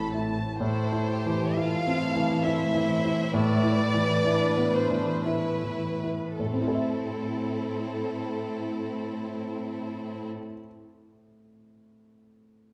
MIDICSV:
0, 0, Header, 1, 7, 480
1, 0, Start_track
1, 0, Key_signature, 0, "minor"
1, 0, Tempo, 946372
1, 305, Time_signature, 3, 2, 24, 8
1, 795, Tempo, 892857
1, 2235, Tempo, 1003344
1, 2715, Tempo, 1134216
1, 3195, Tempo, 1075269
1, 3675, Tempo, 1061947
1, 6059, End_track
2, 0, Start_track
2, 0, Title_t, "Violin section"
2, 0, Program_c, 0, 48
2, 0, Note_on_c, 0, 83, 40
2, 70, Note_off_c, 0, 83, 0
2, 71, Note_on_c, 0, 81, 37
2, 298, Note_on_c, 0, 72, 57
2, 300, Note_off_c, 0, 81, 0
2, 772, Note_off_c, 0, 72, 0
2, 789, Note_on_c, 0, 77, 73
2, 1268, Note_on_c, 0, 76, 59
2, 1271, Note_off_c, 0, 77, 0
2, 1743, Note_off_c, 0, 76, 0
2, 1743, Note_on_c, 0, 74, 81
2, 2465, Note_off_c, 0, 74, 0
2, 2465, Note_on_c, 0, 72, 54
2, 2714, Note_off_c, 0, 72, 0
2, 2714, Note_on_c, 0, 71, 50
2, 3185, Note_off_c, 0, 71, 0
2, 3190, Note_on_c, 0, 69, 42
2, 4957, Note_off_c, 0, 69, 0
2, 6059, End_track
3, 0, Start_track
3, 0, Title_t, "Violin section"
3, 0, Program_c, 1, 48
3, 0, Note_on_c, 1, 69, 52
3, 53, Note_off_c, 1, 69, 0
3, 311, Note_on_c, 1, 69, 37
3, 313, Note_on_c, 1, 64, 39
3, 536, Note_off_c, 1, 64, 0
3, 558, Note_on_c, 1, 67, 43
3, 779, Note_off_c, 1, 69, 0
3, 801, Note_off_c, 1, 67, 0
3, 807, Note_on_c, 1, 65, 46
3, 807, Note_on_c, 1, 69, 44
3, 1042, Note_on_c, 1, 64, 41
3, 1045, Note_off_c, 1, 65, 0
3, 1271, Note_off_c, 1, 69, 0
3, 1273, Note_on_c, 1, 72, 44
3, 1746, Note_off_c, 1, 72, 0
3, 1752, Note_on_c, 1, 71, 46
3, 2232, Note_on_c, 1, 62, 46
3, 2236, Note_off_c, 1, 64, 0
3, 2455, Note_off_c, 1, 62, 0
3, 2461, Note_on_c, 1, 62, 38
3, 2701, Note_off_c, 1, 71, 0
3, 2702, Note_on_c, 1, 64, 32
3, 2706, Note_on_c, 1, 71, 35
3, 2707, Note_off_c, 1, 62, 0
3, 3071, Note_off_c, 1, 71, 0
3, 3076, Note_off_c, 1, 64, 0
3, 3188, Note_on_c, 1, 60, 32
3, 3188, Note_on_c, 1, 64, 32
3, 4955, Note_off_c, 1, 60, 0
3, 4955, Note_off_c, 1, 64, 0
3, 6059, End_track
4, 0, Start_track
4, 0, Title_t, "Grand piano"
4, 0, Program_c, 2, 0
4, 0, Control_c, 2, 64, 127
4, 0, Note_on_c, 2, 45, 48
4, 0, Note_on_c, 2, 52, 34
4, 0, Note_on_c, 2, 60, 32
4, 0, Note_on_c, 2, 64, 31
4, 0, Note_on_c, 2, 69, 33
4, 74, Note_off_c, 2, 64, 0
4, 74, Note_on_c, 2, 64, 28
4, 212, Note_off_c, 2, 69, 0
4, 282, Note_off_c, 2, 45, 0
4, 305, Note_off_c, 2, 64, 0
4, 307, Note_on_c, 2, 45, 48
4, 315, Control_c, 2, 64, 0
4, 319, Note_off_c, 2, 52, 0
4, 319, Note_off_c, 2, 60, 0
4, 408, Control_c, 2, 64, 127
4, 468, Note_on_c, 2, 64, 35
4, 639, Note_on_c, 2, 52, 36
4, 733, Note_off_c, 2, 64, 0
4, 796, Note_on_c, 2, 64, 39
4, 898, Note_off_c, 2, 52, 0
4, 958, Note_on_c, 2, 60, 36
4, 1055, Note_off_c, 2, 64, 0
4, 1115, Note_on_c, 2, 52, 35
4, 1211, Note_off_c, 2, 60, 0
4, 1266, Note_on_c, 2, 64, 47
4, 1368, Note_off_c, 2, 52, 0
4, 1427, Note_on_c, 2, 52, 39
4, 1522, Note_off_c, 2, 64, 0
4, 1594, Note_on_c, 2, 64, 40
4, 1681, Note_off_c, 2, 52, 0
4, 1726, Note_off_c, 2, 45, 0
4, 1746, Note_on_c, 2, 45, 55
4, 1749, Note_off_c, 2, 64, 0
4, 1758, Control_c, 2, 64, 0
4, 1844, Control_c, 2, 64, 127
4, 1904, Note_on_c, 2, 64, 44
4, 2071, Note_on_c, 2, 52, 39
4, 2167, Note_off_c, 2, 64, 0
4, 2237, Note_on_c, 2, 64, 41
4, 2327, Note_off_c, 2, 52, 0
4, 2388, Note_on_c, 2, 59, 36
4, 2484, Note_off_c, 2, 64, 0
4, 2552, Note_on_c, 2, 52, 35
4, 2647, Note_off_c, 2, 59, 0
4, 2719, Note_on_c, 2, 64, 39
4, 2810, Note_off_c, 2, 52, 0
4, 2879, Note_on_c, 2, 52, 26
4, 2974, Note_off_c, 2, 64, 0
4, 3048, Note_on_c, 2, 64, 25
4, 3137, Note_off_c, 2, 52, 0
4, 3178, Note_off_c, 2, 45, 0
4, 3200, Note_off_c, 2, 64, 0
4, 3200, Note_on_c, 2, 45, 28
4, 3205, Control_c, 2, 64, 0
4, 3231, Note_on_c, 2, 57, 31
4, 3262, Note_on_c, 2, 60, 28
4, 3286, Control_c, 2, 64, 127
4, 3295, Note_on_c, 2, 64, 27
4, 3327, Note_on_c, 2, 69, 28
4, 3358, Note_on_c, 2, 76, 30
4, 4967, Note_off_c, 2, 45, 0
4, 4998, Note_off_c, 2, 57, 0
4, 5030, Note_off_c, 2, 60, 0
4, 5064, Note_off_c, 2, 64, 0
4, 5096, Note_off_c, 2, 69, 0
4, 5127, Note_off_c, 2, 76, 0
4, 6059, End_track
5, 0, Start_track
5, 0, Title_t, "Viola section"
5, 0, Program_c, 3, 48
5, 0, Note_on_c, 3, 60, 54
5, 74, Note_off_c, 3, 60, 0
5, 6059, End_track
6, 0, Start_track
6, 0, Title_t, "Cello section"
6, 0, Program_c, 4, 48
6, 0, Note_on_c, 4, 45, 47
6, 171, Note_off_c, 4, 45, 0
6, 301, Note_on_c, 4, 45, 44
6, 3063, Note_off_c, 4, 45, 0
6, 3192, Note_on_c, 4, 45, 35
6, 4959, Note_off_c, 4, 45, 0
6, 6059, End_track
7, 0, Start_track
7, 0, Title_t, "Double bass section"
7, 0, Program_c, 5, 48
7, 0, Note_on_c, 5, 33, 45
7, 172, Note_off_c, 5, 33, 0
7, 6059, End_track
0, 0, End_of_file